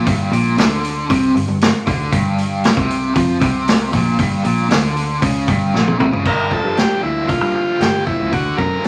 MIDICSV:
0, 0, Header, 1, 5, 480
1, 0, Start_track
1, 0, Tempo, 516351
1, 52, Time_signature, 4, 2, 24, 8
1, 8253, End_track
2, 0, Start_track
2, 0, Title_t, "Transistor combo organ"
2, 0, Program_c, 0, 18
2, 5826, Note_on_c, 0, 70, 92
2, 6066, Note_off_c, 0, 70, 0
2, 6066, Note_on_c, 0, 69, 82
2, 6299, Note_on_c, 0, 67, 85
2, 6306, Note_off_c, 0, 69, 0
2, 6520, Note_off_c, 0, 67, 0
2, 6535, Note_on_c, 0, 64, 75
2, 6768, Note_on_c, 0, 65, 81
2, 6782, Note_off_c, 0, 64, 0
2, 7011, Note_off_c, 0, 65, 0
2, 7022, Note_on_c, 0, 65, 76
2, 7255, Note_on_c, 0, 67, 84
2, 7265, Note_off_c, 0, 65, 0
2, 7478, Note_off_c, 0, 67, 0
2, 7497, Note_on_c, 0, 64, 73
2, 7743, Note_off_c, 0, 64, 0
2, 7750, Note_on_c, 0, 66, 83
2, 7966, Note_off_c, 0, 66, 0
2, 7969, Note_on_c, 0, 70, 75
2, 8219, Note_off_c, 0, 70, 0
2, 8253, End_track
3, 0, Start_track
3, 0, Title_t, "Overdriven electric guitar"
3, 0, Program_c, 1, 29
3, 53, Note_on_c, 1, 43, 103
3, 285, Note_off_c, 1, 43, 0
3, 294, Note_on_c, 1, 46, 101
3, 526, Note_off_c, 1, 46, 0
3, 536, Note_on_c, 1, 50, 100
3, 1007, Note_off_c, 1, 50, 0
3, 1016, Note_on_c, 1, 48, 101
3, 1247, Note_off_c, 1, 48, 0
3, 1252, Note_on_c, 1, 43, 75
3, 1365, Note_off_c, 1, 43, 0
3, 1376, Note_on_c, 1, 43, 69
3, 1566, Note_off_c, 1, 43, 0
3, 1734, Note_on_c, 1, 50, 90
3, 1966, Note_off_c, 1, 50, 0
3, 1967, Note_on_c, 1, 43, 105
3, 2563, Note_off_c, 1, 43, 0
3, 2572, Note_on_c, 1, 48, 100
3, 2925, Note_off_c, 1, 48, 0
3, 2928, Note_on_c, 1, 53, 92
3, 3155, Note_off_c, 1, 53, 0
3, 3158, Note_on_c, 1, 48, 102
3, 3638, Note_off_c, 1, 48, 0
3, 3649, Note_on_c, 1, 46, 92
3, 3883, Note_off_c, 1, 46, 0
3, 3886, Note_on_c, 1, 43, 103
3, 4122, Note_off_c, 1, 43, 0
3, 4122, Note_on_c, 1, 46, 105
3, 4356, Note_off_c, 1, 46, 0
3, 4360, Note_on_c, 1, 50, 99
3, 4839, Note_off_c, 1, 50, 0
3, 4847, Note_on_c, 1, 49, 93
3, 5082, Note_off_c, 1, 49, 0
3, 5085, Note_on_c, 1, 43, 102
3, 5321, Note_off_c, 1, 43, 0
3, 5335, Note_on_c, 1, 46, 92
3, 5562, Note_off_c, 1, 46, 0
3, 5566, Note_on_c, 1, 48, 90
3, 5678, Note_off_c, 1, 48, 0
3, 5682, Note_on_c, 1, 49, 96
3, 5799, Note_on_c, 1, 43, 66
3, 5800, Note_off_c, 1, 49, 0
3, 6034, Note_on_c, 1, 53, 59
3, 6281, Note_on_c, 1, 62, 69
3, 6525, Note_on_c, 1, 58, 55
3, 6766, Note_on_c, 1, 50, 63
3, 6994, Note_off_c, 1, 53, 0
3, 7005, Note_on_c, 1, 53, 65
3, 7007, Note_off_c, 1, 43, 0
3, 7237, Note_off_c, 1, 58, 0
3, 7248, Note_on_c, 1, 58, 59
3, 7479, Note_off_c, 1, 53, 0
3, 7490, Note_on_c, 1, 53, 58
3, 7716, Note_off_c, 1, 50, 0
3, 7727, Note_on_c, 1, 50, 69
3, 7731, Note_off_c, 1, 58, 0
3, 7732, Note_off_c, 1, 53, 0
3, 7968, Note_on_c, 1, 54, 65
3, 8209, Note_off_c, 1, 62, 0
3, 8213, Note_on_c, 1, 62, 70
3, 8253, Note_off_c, 1, 50, 0
3, 8253, Note_off_c, 1, 54, 0
3, 8253, Note_off_c, 1, 62, 0
3, 8253, End_track
4, 0, Start_track
4, 0, Title_t, "Picked electric bass"
4, 0, Program_c, 2, 34
4, 61, Note_on_c, 2, 31, 83
4, 280, Note_off_c, 2, 31, 0
4, 293, Note_on_c, 2, 34, 95
4, 516, Note_off_c, 2, 34, 0
4, 542, Note_on_c, 2, 38, 91
4, 984, Note_off_c, 2, 38, 0
4, 1024, Note_on_c, 2, 36, 88
4, 1242, Note_off_c, 2, 36, 0
4, 1260, Note_on_c, 2, 31, 84
4, 1368, Note_off_c, 2, 31, 0
4, 1381, Note_on_c, 2, 31, 81
4, 1600, Note_off_c, 2, 31, 0
4, 1739, Note_on_c, 2, 38, 93
4, 1959, Note_off_c, 2, 38, 0
4, 1974, Note_on_c, 2, 31, 86
4, 2536, Note_off_c, 2, 31, 0
4, 2573, Note_on_c, 2, 36, 94
4, 2908, Note_off_c, 2, 36, 0
4, 2936, Note_on_c, 2, 41, 93
4, 3157, Note_off_c, 2, 41, 0
4, 3173, Note_on_c, 2, 36, 94
4, 3619, Note_off_c, 2, 36, 0
4, 3656, Note_on_c, 2, 34, 84
4, 3877, Note_off_c, 2, 34, 0
4, 3893, Note_on_c, 2, 31, 83
4, 4116, Note_off_c, 2, 31, 0
4, 4136, Note_on_c, 2, 34, 89
4, 4357, Note_off_c, 2, 34, 0
4, 4380, Note_on_c, 2, 38, 100
4, 4822, Note_off_c, 2, 38, 0
4, 4853, Note_on_c, 2, 37, 87
4, 5076, Note_off_c, 2, 37, 0
4, 5091, Note_on_c, 2, 31, 100
4, 5315, Note_off_c, 2, 31, 0
4, 5336, Note_on_c, 2, 34, 91
4, 5557, Note_off_c, 2, 34, 0
4, 5576, Note_on_c, 2, 36, 91
4, 5686, Note_off_c, 2, 36, 0
4, 5694, Note_on_c, 2, 37, 82
4, 5805, Note_off_c, 2, 37, 0
4, 5812, Note_on_c, 2, 31, 73
4, 6086, Note_off_c, 2, 31, 0
4, 6174, Note_on_c, 2, 43, 75
4, 6356, Note_off_c, 2, 43, 0
4, 6535, Note_on_c, 2, 38, 78
4, 6888, Note_off_c, 2, 38, 0
4, 6888, Note_on_c, 2, 43, 77
4, 7164, Note_off_c, 2, 43, 0
4, 7252, Note_on_c, 2, 31, 80
4, 7527, Note_off_c, 2, 31, 0
4, 7622, Note_on_c, 2, 37, 72
4, 7710, Note_off_c, 2, 37, 0
4, 7737, Note_on_c, 2, 38, 86
4, 7919, Note_off_c, 2, 38, 0
4, 7979, Note_on_c, 2, 42, 79
4, 8160, Note_off_c, 2, 42, 0
4, 8253, End_track
5, 0, Start_track
5, 0, Title_t, "Drums"
5, 60, Note_on_c, 9, 46, 74
5, 62, Note_on_c, 9, 36, 101
5, 153, Note_off_c, 9, 46, 0
5, 154, Note_off_c, 9, 36, 0
5, 306, Note_on_c, 9, 46, 61
5, 399, Note_off_c, 9, 46, 0
5, 541, Note_on_c, 9, 46, 75
5, 552, Note_on_c, 9, 38, 107
5, 634, Note_off_c, 9, 46, 0
5, 645, Note_off_c, 9, 38, 0
5, 785, Note_on_c, 9, 46, 57
5, 878, Note_off_c, 9, 46, 0
5, 1023, Note_on_c, 9, 36, 106
5, 1026, Note_on_c, 9, 46, 76
5, 1116, Note_off_c, 9, 36, 0
5, 1119, Note_off_c, 9, 46, 0
5, 1271, Note_on_c, 9, 46, 58
5, 1364, Note_off_c, 9, 46, 0
5, 1500, Note_on_c, 9, 46, 75
5, 1512, Note_on_c, 9, 38, 112
5, 1593, Note_off_c, 9, 46, 0
5, 1604, Note_off_c, 9, 38, 0
5, 1739, Note_on_c, 9, 36, 106
5, 1743, Note_on_c, 9, 46, 53
5, 1832, Note_off_c, 9, 36, 0
5, 1836, Note_off_c, 9, 46, 0
5, 1976, Note_on_c, 9, 36, 98
5, 1976, Note_on_c, 9, 46, 67
5, 2069, Note_off_c, 9, 36, 0
5, 2069, Note_off_c, 9, 46, 0
5, 2215, Note_on_c, 9, 46, 53
5, 2308, Note_off_c, 9, 46, 0
5, 2454, Note_on_c, 9, 46, 71
5, 2465, Note_on_c, 9, 38, 110
5, 2547, Note_off_c, 9, 46, 0
5, 2558, Note_off_c, 9, 38, 0
5, 2576, Note_on_c, 9, 36, 105
5, 2669, Note_off_c, 9, 36, 0
5, 2700, Note_on_c, 9, 46, 54
5, 2793, Note_off_c, 9, 46, 0
5, 2935, Note_on_c, 9, 36, 103
5, 2935, Note_on_c, 9, 46, 73
5, 3028, Note_off_c, 9, 36, 0
5, 3028, Note_off_c, 9, 46, 0
5, 3175, Note_on_c, 9, 36, 103
5, 3175, Note_on_c, 9, 46, 54
5, 3268, Note_off_c, 9, 36, 0
5, 3268, Note_off_c, 9, 46, 0
5, 3417, Note_on_c, 9, 46, 69
5, 3428, Note_on_c, 9, 38, 103
5, 3510, Note_off_c, 9, 46, 0
5, 3521, Note_off_c, 9, 38, 0
5, 3655, Note_on_c, 9, 36, 95
5, 3656, Note_on_c, 9, 46, 56
5, 3748, Note_off_c, 9, 36, 0
5, 3749, Note_off_c, 9, 46, 0
5, 3894, Note_on_c, 9, 36, 99
5, 3895, Note_on_c, 9, 46, 72
5, 3987, Note_off_c, 9, 36, 0
5, 3988, Note_off_c, 9, 46, 0
5, 4133, Note_on_c, 9, 46, 59
5, 4226, Note_off_c, 9, 46, 0
5, 4374, Note_on_c, 9, 46, 79
5, 4385, Note_on_c, 9, 38, 108
5, 4467, Note_off_c, 9, 46, 0
5, 4478, Note_off_c, 9, 38, 0
5, 4617, Note_on_c, 9, 46, 59
5, 4710, Note_off_c, 9, 46, 0
5, 4853, Note_on_c, 9, 46, 78
5, 4855, Note_on_c, 9, 36, 99
5, 4946, Note_off_c, 9, 46, 0
5, 4948, Note_off_c, 9, 36, 0
5, 5094, Note_on_c, 9, 46, 54
5, 5095, Note_on_c, 9, 36, 102
5, 5187, Note_off_c, 9, 46, 0
5, 5188, Note_off_c, 9, 36, 0
5, 5349, Note_on_c, 9, 38, 60
5, 5442, Note_off_c, 9, 38, 0
5, 5462, Note_on_c, 9, 48, 62
5, 5555, Note_off_c, 9, 48, 0
5, 5578, Note_on_c, 9, 45, 83
5, 5671, Note_off_c, 9, 45, 0
5, 5700, Note_on_c, 9, 43, 79
5, 5793, Note_off_c, 9, 43, 0
5, 5813, Note_on_c, 9, 49, 75
5, 5815, Note_on_c, 9, 36, 95
5, 5906, Note_off_c, 9, 49, 0
5, 5908, Note_off_c, 9, 36, 0
5, 6054, Note_on_c, 9, 36, 76
5, 6147, Note_off_c, 9, 36, 0
5, 6295, Note_on_c, 9, 46, 43
5, 6306, Note_on_c, 9, 38, 93
5, 6388, Note_off_c, 9, 46, 0
5, 6399, Note_off_c, 9, 38, 0
5, 6778, Note_on_c, 9, 36, 100
5, 6779, Note_on_c, 9, 46, 44
5, 6871, Note_off_c, 9, 36, 0
5, 6872, Note_off_c, 9, 46, 0
5, 7257, Note_on_c, 9, 46, 47
5, 7268, Note_on_c, 9, 38, 94
5, 7350, Note_off_c, 9, 46, 0
5, 7361, Note_off_c, 9, 38, 0
5, 7500, Note_on_c, 9, 36, 78
5, 7593, Note_off_c, 9, 36, 0
5, 7741, Note_on_c, 9, 36, 96
5, 7741, Note_on_c, 9, 46, 44
5, 7833, Note_off_c, 9, 46, 0
5, 7834, Note_off_c, 9, 36, 0
5, 7980, Note_on_c, 9, 36, 80
5, 8073, Note_off_c, 9, 36, 0
5, 8220, Note_on_c, 9, 46, 45
5, 8253, Note_off_c, 9, 46, 0
5, 8253, End_track
0, 0, End_of_file